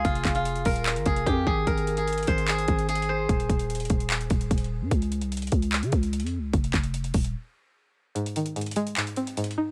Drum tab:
HH |x-----x-----x-----x-----x-----x-----o-----x-----x-----x-----x-----x-----x-----------------------|x-----x-----x-----x-----x--x--x--x--x-----x-----x-----x-----x-----x-----x---x---x---------------|x-----x-----x-----x-----x--x--x--x--x-----x-----x-----x-----x-----x-----x---x---x---------------|x-----x-----x-----x-----x--x--x--x--x-----x-----x-----x-----x-----x-----x---x---x---------------|
CP |------------x-----------------------------------x-----------------------------------------------|------------------------------------------------x-----------------------------------------------|------------------------------------------------x-----------------------------------------------|------------------------------------------------x-----------------------------------------------|
BD |o-----------o-----------------------o-----------------------o-----------o-----------o-----------|o-----------------------------------o-----------------------o-----------------------------------|o-----------o-----------------------o-----------------------o-----------o-----------------------|o-----------------------------------o-----------------------o-----------------------------------|

HH |x-----x-----x-----x-----x-----x-----o-----x-----------------------------------------------------|x-----x-----x-----x-----x--x--x--x--x-----x-----x-----x-----x-----x-----x---x---x---------------|
CP |------------x-----------------------------------------------------------------------------------|------------------------------------------------x-----------------------------------------------|
BD |o-----------o-----------------------o-----------------------------------------------------------|------------------------------------------------------------------------------------------------|